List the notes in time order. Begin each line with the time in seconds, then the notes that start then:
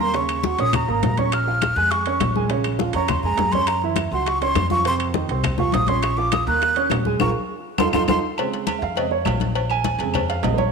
Already playing: D#2
0.00 A#3 A#4 A#5 C6, high bongo
0.14 C#3 C#4 C#5 C#6, high bongo, high timbale
0.29 high conga, high timbale, claves
0.44 F#3 F#4 F#5, high bongo, high conga, low timbale
0.58 A#1 C#4 C#5 C#6 D#6, high bongo, high conga, high timbale
0.73 A#5, high bongo, high conga, low conga, high timbale, claves
0.88 G#1 A#3 A#4 A#5, high bongo, high conga
1.03 A#1, high bongo, low bongo, high conga, high timbale, low timbale
1.17 C#4 C#5 C#6, high bongo, high conga, high timbale
1.32 F6, high bongo, high conga, high timbale, claves
1.47 F3 F4 F5, high conga
1.62 high bongo, high conga, high timbale, low timbale, claves
1.76 F2 G#3 G#4 G#5 F#6, high bongo, high conga
1.91 C#6, high bongo, high conga, high timbale
2.06 C#4 C#5 C#6, high bongo, high conga, high timbale
2.20 A#1, high bongo, low bongo, high conga, high timbale, low timbale, claves
2.35 G#3 G#4 G#5, high bongo, high conga
2.50 C#3 C#4 C#5, high bongo, high conga, high timbale
2.64 high conga, high timbale, claves
2.79 F3 F4 F5, high bongo, high conga, low timbale
2.93 F2 C#4 C#5 A#5 C#6, high bongo, high conga, high timbale
3.08 C6, high bongo, high conga, low conga, high timbale, claves
3.23 F2 G#3 G#4 G#5 A#5, high bongo, high conga
3.38 F#2, high bongo, low bongo, high conga, high timbale, low timbale
3.52 C#4 C#5 C6 C#6, high bongo, high conga, high timbale
3.67 A#5, high bongo, high conga, high timbale, claves
3.82 E3 E4 E5, high conga
3.96 high bongo, high conga, high timbale, low timbale, claves
4.11 C#2 F#3 F#4 F#5 C6, high bongo, high conga
4.26 C#6, high bongo, high conga, high timbale
4.41 C#4 C#5 C6 C#6, high bongo, high conga, high timbale
4.55 F2, high bongo, low bongo, high conga, high timbale, low timbale, claves
4.70 F3 F4 F5 C#6, high bongo, high conga
4.84 C3 C4 C5 C6, high bongo, high conga, high timbale
4.99 high conga, high timbale, claves
5.14 D#3 D#4 D#5, high bongo, high conga, low timbale
5.28 C2 C4 C5 C6, high bongo, high conga, high timbale
5.43 high bongo, high conga, low conga, high timbale, claves
5.58 C2 F3 F4 F5 C#6, high bongo, high conga, low conga
5.72 A#1 D#6, high bongo, low bongo, high conga, high timbale, low timbale
5.87 C#4 C#5 C6 C#6, high bongo, high conga, high timbale
6.02 C#6, high bongo, high conga, high timbale, claves
6.17 F3 F4 F5 D6, high conga
6.32 D#6, high bongo, high conga, high timbale, low timbale, claves
6.47 D#2 A#3 A#4 A#5 F#6, high bongo, high conga
6.61 high bongo, high conga, high timbale
6.76 C#4 C#5 C#6, high bongo, high conga, high timbale
6.90 A#1, high bongo, low bongo, high conga, high timbale, low timbale, claves
7.05 G#3 G#4 G#5, high bongo, high conga
7.20 A#1 F4 G#4 A#4 C#6, low bongo, high conga, high timbale, claves
7.78 F2 D#4 F4 A4 C6, low bongo, high conga, high timbale, claves
7.93 F2 D#4 F4 A4 C6, low bongo, high conga, high timbale, claves
8.08 F2 D#4 F4 A4 C6, low bongo, high conga, high timbale, claves
8.38 C#3 G#3 C4, cowbell, high conga, low agogo, claves
8.53 cowbell, high conga
8.67 cowbell, high conga, low timbale, low agogo, claves
8.79 F2 E5, high conga
8.83 F5
8.96 C#3 G#3 C4 D#5, cowbell, high conga, low agogo
9.11 C#5, high conga
9.25 A#1 F5, cowbell, high conga, low timbale, low agogo, claves
9.40 cowbell, high conga
9.55 cowbell, high conga, low agogo
9.70 G#5, high conga, low agogo, claves
9.84 cowbell, high conga, low timbale
9.98 F2 C#3 G#3 C4, cowbell, high conga, low agogo
10.14 cowbell, high conga, low conga, low agogo, claves
10.28 F5, cowbell, high conga
10.43 A#1 C#3 G#3 C4 D#5, cowbell, high conga, low timbale, low agogo
10.54 C5, low agogo
10.58 C#5, high conga